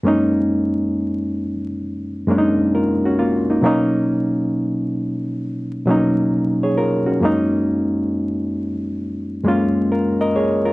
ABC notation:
X:1
M:4/4
L:1/16
Q:"Swing 16ths" 1/4=67
K:F#
V:1 name="Reed electric piano"
z12 [EA] [CF] [A,E] [A,D]- | [A,D] z12 [Gc] [EA] [CF]- | [CF] z8 z3 [EA] [Ad] [Gc] [EA] |]
V:2 name="Reed electric piano"
[F,,G,A,CD]6 z4 [F,,G,A,C=D^D]4 z2 | [B,,F,A,CD]6 z4 [B,,F,A,CD]4 z2 | [F,,G,A,CD]6 z4 [F,,G,A,CE]4 z2 |]